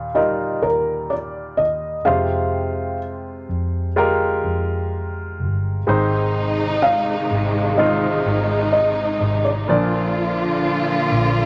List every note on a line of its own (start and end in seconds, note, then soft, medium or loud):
0.00 0.60 D#2 medium
0.00 2.08 A#2 medium
0.00 0.15 G3 medium
0.00 0.15 D#4 medium
0.00 0.16 F4 medium
0.00 0.17 A#4 medium
0.00 0.18 F5 medium
0.15 1.96 G3 medium
0.15 1.96 D#4 soft
0.15 1.97 F4 soft
0.15 1.97 A#4 medium
0.15 0.65 D#5 medium
0.62 1.55 D#2 medium
0.62 1.12 A#4 medium
1.10 1.60 D5 medium
1.57 2.03 D#2 medium
1.57 2.07 D#5 medium
2.05 3.45 F2 medium
2.05 3.45 C3 medium
2.05 3.87 G#3 medium
2.05 3.87 F4 medium
2.05 3.87 G4 medium
2.05 3.88 C5 medium
2.05 2.97 F5 medium
3.49 4.40 F2 medium
3.96 5.77 G#3 medium
3.96 5.78 F4 medium
3.96 5.78 G4 medium
3.96 5.78 A#4 medium
4.44 5.41 F2 medium
5.40 5.84 G1 medium
5.87 7.26 G#1 loud
5.87 7.26 G#2 medium
5.87 9.65 C3 medium
5.87 9.64 D#3 medium
5.87 7.26 D#3 medium
5.87 7.68 G#3 medium
5.87 9.64 G#3 medium
5.87 7.68 C4 medium
5.87 7.76 D#4 medium
5.87 7.69 D#4 medium
5.87 7.69 C5 medium
6.82 7.81 F5 medium
7.31 8.22 G#1 medium
7.77 9.58 G#3 medium
7.77 9.59 C4 medium
7.77 9.66 D#4 medium
7.77 9.59 D#4 medium
7.77 9.59 F4 medium
7.77 8.71 D#5 medium
8.25 9.17 G#1 medium
8.72 9.40 D#5 medium
9.21 9.65 G#1 medium
9.45 11.46 D5 medium
9.68 11.07 A#1 medium
9.68 11.07 A#2 medium
9.68 11.46 D3 medium
9.68 11.46 F3 medium
9.68 11.07 F3 soft
9.68 11.46 A#3 medium
9.68 11.46 D4 soft
9.68 11.46 F4 medium
9.68 11.46 D5 medium
11.12 11.46 A#1 medium